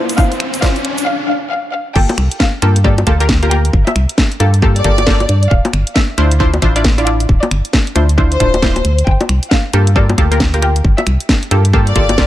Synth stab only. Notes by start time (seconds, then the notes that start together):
Already playing: D4 E4 F4 C5
0.18 D4 E4 F4 C5
0.62 D4 E4 F4 C5
1.96 A#3 F4 G4 A4
2.62 A#3 F4 G4 A4
2.84 A#3 F4 G4 A4
3.07 A#3 F4 G4 A4
3.20 A#3 F4 G4 A#4
3.43 A#3 F4 G4 A#4
3.51 A#3 F4 G4 A#4
4.40 A#3 F4 G4 A4
4.62 A#3 F4 G4 A4
4.84 A#3 F4 G4 A4
5.07 A#3 F4 G4 A4
6.18 D4 E4 F4 C5
6.40 D4 E4 F4 C5
6.62 D4 E4 F4 C5
6.76 D4 E4 F4 D5
6.98 D4 E4 F4 D5
7.06 D4 E4 F4 D5
7.95 D4 E4 F4 C5
8.18 D4 E4 F4 C5
8.40 D4 E4 F4 C5
8.62 D4 E4 F4 C5
9.73 A#3 F4 G4 A4
9.96 A#3 F4 G4 A4
10.18 A#3 F4 G4 A4
10.31 A#3 F4 G4 A#4
10.54 A#3 F4 G4 A#4
10.62 A#3 F4 G4 A#4
11.51 A#3 F4 G4 A4
11.73 A#3 F4 G4 A4
11.96 A#3 F4 G4 A4
12.18 A#3 F4 G4 A4